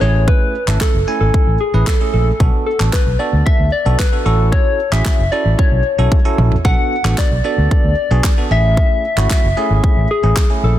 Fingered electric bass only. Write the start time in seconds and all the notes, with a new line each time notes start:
0.01 A1
0.68 G#1
0.94 F#1
1.21 G#1
1.47 A1
1.74 A1
2.14 A#1
2.40 B1
2.80 A1
3.06 B1
3.33 D2
3.60 D2
3.86 B1
4.26 A1
4.92 A1
5.19 F#1
5.45 A1
5.72 B1
5.98 B1
6.38 A#1
6.65 B1
7.05 A1
7.31 B1
7.58 D2
7.84 D2
8.11 B1
8.51 A1
9.17 G#1
9.44 F#1
9.70 G#1
9.97 A1
10.24 A1
10.63 A#1